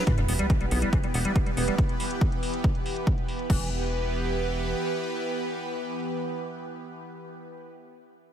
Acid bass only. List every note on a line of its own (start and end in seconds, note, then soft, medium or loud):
0.07 0.12 E3 medium
0.18 0.21 G3 medium
0.29 0.33 B3 medium
0.39 0.47 G3 loud
0.50 0.53 E3 loud
0.61 0.66 G3 medium
0.71 0.79 B3 medium
0.82 0.90 G3 loud
0.93 0.98 E3 medium
1.04 1.06 G3 medium
1.14 1.19 B3 medium
1.25 1.32 G3 loud
1.36 1.39 E3 loud
1.46 1.51 G3 medium
1.57 1.64 B3 medium
1.68 1.75 G3 loud
3.50 3.70 E3 medium